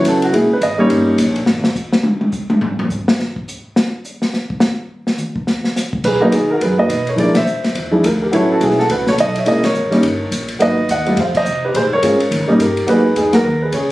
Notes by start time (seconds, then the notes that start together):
Already playing: F#3 B3 C#4 E4
0.04 C#2 A4, kick, hi-hat pedal, ride
0.22 F#4, ride
0.32 A#1 G#3 A#3 C#4 E4 G#4, kick, ride
0.49 muted upright bass stroke
0.53 B4
0.61 G#1 D#5, kick, hi-hat pedal, ride
0.78 G3 A#3 C#4 D#4 C#5
0.89 G1, kick, ride
1.18 A#1, kick, hi-hat pedal, ride
1.36 ride
1.46 G#1, snare
1.64 snare
1.75 kick, hi-hat pedal
1.93 snare
2.03 high tom
2.21 high tom
2.32 kick, hi-hat pedal
2.50 high tom
2.61 floor tom
2.79 floor tom
2.90 kick, hi-hat pedal
3.08 snare
3.19 snare
3.36 kick
3.48 hi-hat pedal
3.76 snare
4.04 hi-hat pedal
4.22 snare
4.34 snare
4.50 kick
4.60 snare, hi-hat pedal
5.07 snare
5.18 hi-hat pedal, mid tom
5.36 kick
5.47 snare
5.64 snare
5.76 snare, hi-hat pedal
5.93 kick
6.04 B1 G#4 B4, kick, crash
6.20 F#3 A#3 B3 D#4, muted upright bass stroke
6.32 D#2 D#4 G#4, kick, hi-hat pedal, ride
6.51 F#4 A#4
6.61 F#2 G#4 B4, kick, ride
6.78 F#3 A#3 B3 D#4 B4 D#5
6.89 B2, kick, hi-hat pedal, ride
7.07 A#4 C#5, ride
7.16 A#2 F3 G#3 D4 E4 D5, kick, ride
7.21 A#4
7.35 C5 E5, snare, ride
7.45 F2, hi-hat pedal
7.64 snare, ride
7.75 E2, kick, ride
7.91 F3 G#3 D4 E4
8.04 D2 F4 A#4, kick, hi-hat pedal, ride
8.22 G4 A#4
8.31 A1 F#3 B3 C#4 E4 A4 C#5, kick, ride
8.52 F#4 A4
8.60 B1 G#4, kick, hi-hat pedal, ride
8.65 E4
8.70 snare
8.79 F#4 A4, snare
8.89 C#2 F#4 B4, kick, ride
9.07 A4 C#5, snare
9.18 B1 A4 D#5, kick, hi-hat pedal, ride
9.36 C#5 E5, ride
9.45 A#1 G#3 A#3 C#4 E4 A#4 D#5, kick, ride
9.61 A#4 C#5, muted upright bass stroke, snare, ride
9.74 G#1, hi-hat pedal
9.90 G3 A#3 C#4 D#4, snare, ride
10.03 G1, kick, ride
10.31 A#1, kick, hi-hat pedal, ride
10.48 ride
10.59 G#1 F#3 A#3 B3 D#4 B4 D#5, kick, ride
10.89 D#2 D#5 F#5, kick, hi-hat pedal, ride
11.06 G3 A3 C4 F4, ride
11.17 F2 C5 F5, kick, ride
11.35 C5 D#5, kick, crash
11.45 C3, hi-hat pedal
11.65 G4 B4
11.74 A#2 G#4 C5, kick, ride
11.82 G#2
11.92 F2 A#4 C#5
12.02 G#2 G#3 C4 C#4 F4, kick, hi-hat pedal, ride
12.20 ride
12.31 D#2, kick, ride
12.40 C#2
12.47 A#1 G3 A#3 C#4 D#4
12.59 G2 G4 A#4, kick, hi-hat pedal, ride
12.77 ride
12.86 G#2 F#3 A#3 B3 D#4 G#4 B4, kick, ride
13.16 E2 D#4 G#4, kick, hi-hat pedal, ride
13.33 F#3 A#3 B3 F#4 A#4, snare, ride
13.44 D#2
13.62 G#4 B4
13.72 C#2 G#4 C#5, kick, hi-hat pedal, ride